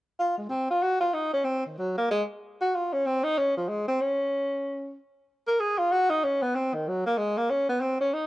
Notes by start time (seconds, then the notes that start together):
0.19 F4
0.38 G#3
0.49 C4
0.70 F4
0.82 F#4
1.00 F4
1.14 D#4
1.33 C#4
1.44 C4
1.66 D#3
1.78 F#3
1.97 A#3
2.11 G#3
2.61 F#4
2.75 F4
2.93 C#4
3.06 C4
3.24 D#4
3.38 C#4
3.57 F3
3.68 G#3
3.88 C4
4.01 C#4
5.47 A#4
5.60 G#4
5.78 F4
5.91 F#4
6.10 D#4
6.24 C#4
6.42 B3
6.55 C4
6.74 D#3
6.88 F#3
7.06 A#3
7.17 G#3
7.38 A#3
7.50 C#4
7.69 B3
7.81 C4
8.00 C#4
8.14 D#4